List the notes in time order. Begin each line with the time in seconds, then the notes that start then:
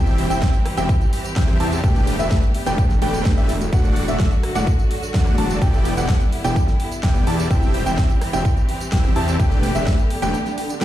Already playing: E1 E3 G3 C4 E4 G4 E5 G5
0.07 closed hi-hat, tambourine
0.18 open hi-hat
0.30 E1 C4 E4 G4 E5 G5, closed hi-hat, tambourine
0.42 kick, snare, closed hi-hat, tambourine
0.54 closed hi-hat, tambourine
0.66 cross-stick, open hi-hat
0.77 E1 C4 E4 G4 E5 G5, closed hi-hat, tambourine
0.89 kick, closed hi-hat, tambourine
1.01 closed hi-hat, tambourine
1.13 open hi-hat
1.25 closed hi-hat, tambourine
1.36 E2 C4 E4 G4 E5 G5, kick, snare, closed hi-hat, tambourine
1.48 cross-stick, closed hi-hat, tambourine
1.60 E2 C4 E4 G4 E5 A5, open hi-hat
1.72 closed hi-hat, tambourine
1.84 E1 D3 A3 B3 D4 G4 B4 G5, kick, closed hi-hat, tambourine
1.95 closed hi-hat, tambourine
2.07 open hi-hat
2.19 E1 A3 D4 G4 B4 E5, closed hi-hat, tambourine
2.31 kick, snare, closed hi-hat, tambourine
2.43 closed hi-hat, tambourine
2.54 open hi-hat
2.66 E1 A3 D4 G4 B4 G5, closed hi-hat, tambourine
2.78 kick, closed hi-hat, tambourine
2.90 snare, closed hi-hat, tambourine
3.02 E1 A3 D4 G4 B4 G5, open hi-hat
3.14 closed hi-hat, tambourine
3.25 kick, snare, closed hi-hat, tambourine
3.37 E1 A3 D4 G4 B4 E5, closed hi-hat, tambourine
3.49 open hi-hat
3.61 closed hi-hat, tambourine
3.73 E1 F#3 A3 D4 F#4 D5 F#5, kick, closed hi-hat, tambourine
3.84 closed hi-hat, tambourine
3.96 open hi-hat
4.08 E1 A3 D4 F#4 D5 E5, closed hi-hat, tambourine
4.20 kick, snare, closed hi-hat, tambourine
4.32 closed hi-hat, tambourine
4.43 cross-stick, open hi-hat
4.55 E1 A3 D4 F#4 D5 F#5, closed hi-hat, tambourine
4.67 kick, closed hi-hat, tambourine
4.79 closed hi-hat, tambourine
4.91 open hi-hat
5.03 closed hi-hat, tambourine
5.14 E2 A3 D4 F#4 D5 F#5, kick, snare, closed hi-hat, tambourine
5.26 cross-stick, closed hi-hat, tambourine
5.38 E1 A3 D4 F#4 D5 A5, open hi-hat
5.50 closed hi-hat, tambourine
5.62 E1 G3 B3 E4 G4 D5 G5, kick, closed hi-hat, tambourine
5.73 closed hi-hat, tambourine
5.85 open hi-hat
5.97 E1 B3 E4 G4 D5 F#5, closed hi-hat, tambourine
6.09 kick, snare, closed hi-hat, tambourine
6.21 closed hi-hat, tambourine
6.33 open hi-hat
6.44 E1 B3 E4 G4 D5 G5, closed hi-hat, tambourine
6.56 kick, closed hi-hat, tambourine
6.68 snare, closed hi-hat, tambourine
6.80 open hi-hat
6.92 closed hi-hat, tambourine
7.03 E1 B3 E4 G4 D5 G5, kick, snare, closed hi-hat, tambourine
7.15 closed hi-hat, tambourine
7.27 E2 B3 E4 G4 D5 A5, open hi-hat
7.39 closed hi-hat, tambourine
7.51 E1 E3 C4 E4 G4 E5 G5, kick, closed hi-hat, tambourine
7.62 closed hi-hat, tambourine
7.74 open hi-hat
7.86 E1 C4 E4 G4 E5 G5, closed hi-hat, tambourine
7.98 kick, snare, closed hi-hat, tambourine
8.10 closed hi-hat, tambourine
8.21 cross-stick, open hi-hat
8.33 E1 C4 E4 G4 E5 G5, closed hi-hat, tambourine
8.45 kick, closed hi-hat, tambourine
8.57 closed hi-hat, tambourine
8.69 open hi-hat
8.80 closed hi-hat, tambourine
8.92 E1 C4 E4 G4 E5 G5, kick, snare, closed hi-hat, tambourine
9.04 cross-stick, closed hi-hat, tambourine
9.16 E2 C4 E4 G4 E5 A5, open hi-hat
9.28 closed hi-hat, tambourine
9.39 E1 D3 A3 B3 D4 G4 B4 G5, kick, closed hi-hat, tambourine
9.51 closed hi-hat, tambourine
9.63 open hi-hat
9.75 E1 A3 D4 G4 B4 E5, closed hi-hat, tambourine
9.87 kick, snare, closed hi-hat, tambourine
9.99 closed hi-hat, tambourine
10.10 open hi-hat
10.22 E1 A3 D4 G4 B4 G5, closed hi-hat, tambourine
10.34 closed hi-hat, tambourine, swell
10.46 snare, closed hi-hat, tambourine
10.58 open hi-hat
10.70 closed hi-hat, tambourine
10.81 A3 D4 G4 B4 G5, snare, closed hi-hat